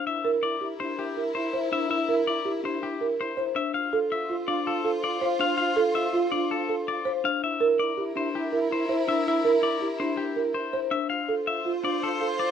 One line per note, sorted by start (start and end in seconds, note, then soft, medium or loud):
0.00 0.12 D4 medium
0.06 0.19 E4 soft
0.06 3.52 E4 medium
0.06 3.52 A#4 medium
0.06 0.30 E5 loud
0.24 0.37 E4 medium
0.24 0.49 A#4 loud
0.43 0.56 E4 medium
0.43 0.67 D5 medium
0.60 0.74 E4 medium
0.60 0.85 G4 medium
0.80 1.04 D4 medium
0.80 0.93 E4 medium
0.80 1.04 C5 medium
0.98 1.11 E4 medium
0.98 1.22 G4 medium
1.17 1.30 E4 medium
1.17 1.41 A#4 medium
1.35 1.49 E4 medium
1.35 1.59 C5 medium
1.53 1.67 E4 medium
1.53 1.77 C5 loud
1.72 1.96 D4 medium
1.72 1.85 E4 medium
1.72 1.89 E5 loud
1.89 2.03 E4 medium
1.89 2.14 E5 loud
2.08 2.21 E4 loud
2.08 2.33 A#4 medium
2.27 2.40 E4 medium
2.27 2.51 D5 medium
2.45 2.58 E4 medium
2.45 2.69 G4 medium
2.63 2.88 D4 medium
2.63 2.76 E4 medium
2.63 2.88 C5 medium
2.81 2.95 E4 medium
2.81 3.07 G4 medium
3.00 3.13 E4 medium
3.00 3.25 A#4 medium
3.19 3.32 E4 medium
3.19 3.44 C5 loud
3.37 3.50 E4 soft
3.37 3.61 C5 loud
3.56 3.80 D4 medium
3.56 3.74 E5 loud
3.74 7.20 F4 medium
3.74 3.87 F4 soft
3.74 7.20 C5 medium
3.74 3.98 F5 medium
3.92 4.05 F4 medium
3.92 4.17 A4 loud
4.11 4.24 F4 medium
4.11 4.35 E5 medium
4.29 4.42 F4 medium
4.29 4.54 F4 medium
4.48 4.72 D4 medium
4.48 4.61 F4 medium
4.48 4.72 D5 medium
4.67 4.79 F4 medium
4.67 4.91 A4 loud
4.84 4.97 F4 medium
4.84 5.09 A4 medium
5.03 5.16 F4 loud
5.03 5.27 D5 medium
5.22 5.35 F4 loud
5.22 5.46 C5 loud
5.39 5.64 D4 medium
5.39 5.53 F4 loud
5.39 5.56 F5 loud
5.58 5.72 F4 loud
5.58 5.82 F5 loud
5.76 5.90 F4 loud
5.76 6.01 A4 loud
5.95 6.09 F4 medium
5.95 6.19 E5 medium
6.13 6.37 F4 medium
6.13 6.27 F4 medium
6.32 6.56 D4 medium
6.32 6.45 F4 medium
6.32 6.56 D5 medium
6.51 6.64 F4 medium
6.51 6.75 A4 medium
6.69 6.82 F4 medium
6.69 6.93 A4 medium
6.88 7.01 F4 medium
6.88 7.12 D5 medium
7.05 7.19 F4 soft
7.05 7.30 C5 loud
7.24 7.48 D4 medium
7.24 7.43 F5 loud
7.42 10.88 E4 loud
7.42 7.56 E4 soft
7.42 10.88 A#4 medium
7.42 7.67 E5 loud
7.61 7.74 E4 medium
7.61 7.85 A#4 loud
7.79 7.92 E4 medium
7.79 8.03 D5 medium
7.97 8.11 E4 medium
7.97 8.22 G4 medium
8.15 8.40 D4 medium
8.15 8.28 E4 medium
8.15 8.40 C5 medium
8.34 8.47 E4 medium
8.34 8.59 G4 medium
8.52 8.66 E4 loud
8.52 8.77 A#4 medium
8.71 8.84 E4 medium
8.71 8.96 C5 medium
8.89 9.02 E4 loud
8.89 9.14 C5 loud
9.07 9.32 D4 medium
9.07 9.20 E4 loud
9.07 9.27 E5 loud
9.27 9.40 E4 loud
9.27 9.51 E5 loud
9.44 9.57 E4 loud
9.44 9.69 A#4 loud
9.62 9.76 E4 loud
9.62 9.87 D5 medium
9.80 9.93 E4 medium
9.80 10.06 G4 medium
9.99 10.24 D4 medium
9.99 10.13 E4 medium
9.99 10.24 C5 medium
10.17 10.31 E4 medium
10.17 10.42 G4 medium
10.36 10.50 E4 medium
10.36 10.61 A#4 medium
10.54 10.68 E4 medium
10.54 10.79 C5 medium
10.73 10.87 E4 soft
10.73 10.98 C5 loud
10.91 11.16 D4 medium
10.91 11.09 E5 loud
11.10 11.23 F4 soft
11.10 12.51 F4 medium
11.10 12.51 C5 medium
11.10 11.34 F5 loud
11.29 11.42 F4 medium
11.29 11.53 A4 medium
11.47 11.60 F4 medium
11.47 11.71 E5 medium
11.65 11.90 F4 medium
11.65 11.79 F4 medium
11.84 12.08 D4 medium
11.84 11.98 F4 medium
11.84 12.08 D5 medium
12.03 12.16 F4 medium
12.03 12.27 A4 medium
12.21 12.34 F4 medium
12.21 12.45 A4 medium
12.40 12.51 F4 medium
12.40 12.51 D5 medium